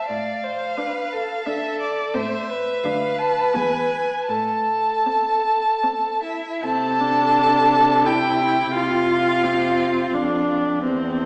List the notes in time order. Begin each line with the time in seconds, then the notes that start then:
0.07 A2 D5 F5
0.44 C5
0.78 D4 B4
1.12 A4
1.46 D4 A4 E5
1.80 D5
2.14 A2 C4 C5 E5
2.50 B4
2.84 D2 D4 F5
3.19 A5
3.54 E2 B3 G#5
4.27 A2 A4 A5
5.06 C4
5.83 C4
6.23 E4 E5
6.63 C3 C4 A4 A5
7.00 D4
8.05 E4 G4 G5
8.73 C3 F4 F5
9.44 C4
10.14 F2 D4
10.83 E2 C4